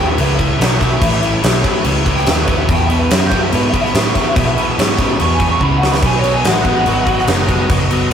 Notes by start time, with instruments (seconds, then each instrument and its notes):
Already playing: picked electric bass D#2, overdriven electric guitar A2 F#3, tonewheel organ A3 C#4 E4 C#5
0.07 lead electric guitar E5
0.17 picked electric bass C#2, overdriven electric guitar A2 E3, lead electric guitar B4, crash
0.35 overdriven electric guitar A2 E3, lead electric guitar E5
0.39 kick, crash
0.48 lead electric guitar E5
0.58 picked electric bass B1, overdriven electric guitar A2 F#3, crash
0.62 snare
0.79 overdriven electric guitar A2 F#3, kick, crash
1.01 picked electric bass A1, overdriven electric guitar A2 E3, kick, crash
1.21 overdriven electric guitar A2 E3, crash
1.43 picked electric bass B1, overdriven electric guitar A2 F#3, snare, crash
1.64 overdriven electric guitar A2 F#3, muted picked electric bass stroke, kick, crash
1.84 picked electric bass C#2, overdriven electric guitar A2 E3, crash
2.06 overdriven electric guitar A2 E3, kick, crash
2.16 lead electric guitar G5, snare
2.26 picked electric bass D#2, overdriven electric guitar A2 F#3, lead electric guitar E5, snare, crash
2.45 overdriven electric guitar A2, lead electric guitar B4, kick, snare, crash
2.49 overdriven electric guitar F#3
2.58 lead electric guitar E5
2.69 picked electric bass E2, overdriven electric guitar E2 B2, tonewheel organ C4 F4 A4 F5, kick, crash
2.73 lead electric guitar G5
2.84 tonewheel organ B3 E4 G#4 E5, lead electric guitar E5
2.90 overdriven electric guitar E2 B2, crash
2.99 lead electric guitar B4
3.11 overdriven electric guitar E2 C#3, picked electric bass F#2, lead electric guitar E5, snare, crash
3.27 lead electric guitar G5
3.31 overdriven electric guitar E2 C#3, kick, crash
3.41 lead electric guitar E5
3.51 overdriven electric guitar E2 B2, picked electric bass G#2, lead electric guitar B4, crash
3.70 lead electric guitar E5
3.74 overdriven electric guitar E2 B2, muted picked electric bass stroke, kick, crash
3.81 lead electric guitar E5, snare
3.94 overdriven electric guitar E2 C#3, picked electric bass A2, snare, crash
4.14 overdriven electric guitar E2 C#3, muted picked electric bass stroke, kick, snare, crash
4.35 overdriven electric guitar E2 B2, picked electric bass B2, kick, crash
4.56 overdriven electric guitar E2 B2, muted picked electric bass stroke, crash
4.78 overdriven electric guitar E2 C#3, picked electric bass G#2, snare, crash
4.98 overdriven electric guitar E2 C#3, kick, crash
5.19 overdriven electric guitar E2 B2, picked electric bass E2, lead electric guitar C#6, crash
5.34 lead electric guitar G#5
5.40 overdriven electric guitar E2 B2, kick, crash
5.48 lead electric guitar C#6
5.60 picked electric bass C#2, overdriven electric guitar E2 C#3, lead electric guitar B5, kick
5.78 overdriven electric guitar E2 C#3, lead electric guitar F#5
5.83 snare
5.92 lead electric guitar B5, snare
6.00 picked electric bass B1, overdriven electric guitar B2 F#3, tonewheel organ C4 E4 G4 E5, kick, crash
6.06 lead electric guitar G#5
6.16 tonewheel organ B3 D#4 F#4 D#5, lead electric guitar C#5
6.24 overdriven electric guitar B2 F#3, crash
6.34 lead electric guitar G#5
6.45 picked electric bass A1, overdriven electric guitar B2 G#3, lead electric guitar F#5, snare, crash
6.65 overdriven electric guitar B2 G#3, kick, crash
6.86 picked electric bass G#1, overdriven electric guitar B2 F#3, crash
7.07 overdriven electric guitar B2 F#3, kick, crash
7.19 snare
7.27 picked electric bass F#1, overdriven electric guitar B2 G#3, snare, crash
7.49 overdriven electric guitar B2 G#3, kick, crash
7.70 picked electric bass F#1, overdriven electric guitar B2 F#3, kick, crash
7.91 overdriven electric guitar B2 F#3, crash